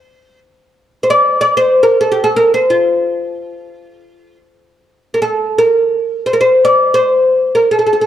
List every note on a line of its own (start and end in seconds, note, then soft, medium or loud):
0.00 0.39 C5 medium
1.03 1.10 C5 medium
1.10 1.40 D5 medium
1.41 1.57 D5 medium
1.57 1.83 C5 medium
1.83 2.00 A#4 medium
2.01 2.14 A4 medium
2.12 2.24 G4 medium
2.24 2.36 A4 medium
2.36 2.54 A#4 medium
2.54 2.71 C5 medium
2.70 4.37 F4 medium
5.14 5.21 A#4 medium
5.22 5.58 A4 medium
5.58 6.26 A#4 medium
6.26 6.33 C5 medium
6.33 6.40 A#4 medium
6.41 6.64 C5 medium
6.65 6.91 D5 medium
6.94 7.55 C5 medium
7.55 7.71 A#4 medium
7.71 7.78 A4 medium
7.79 7.85 A4 soft
7.86 7.92 A4 medium
7.93 8.00 A4 soft
8.01 8.07 A4 medium